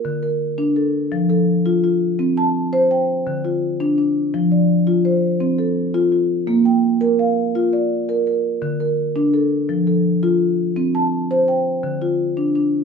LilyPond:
\new Staff \with { instrumentName = "Marimba" } { \time 12/8 \key f \major \tempo 4. = 112 << { bes'8 bes'4. a'4. a'4. f'4~ | f'8 a''4. g''4. f'4. d'4~ | d'8 d''4. c''4. a'4. f'4~ | f'8 g''4. f''4. d''4. bes'4~ |
bes'8 bes'4. a'4. a'4. r4 | r8 a''4. g''4. f'4. d'4 | } \\ { d4 r8 d'4 r8 f4 r8 f'4 r8 | c'4 r8 c''4 r8 d4 r8 d'4 r8 | f4 r8 f'4 r8 c'4 r8 f'4 r8 | bes4 r8 bes'4 r8 f'4 r8 bes'4 r8 |
d4 r8 d'4 r8 f4 r8 f'4 r8 | c'4 r8 c''4 r8 d4 r8 d'4 r8 | } >> }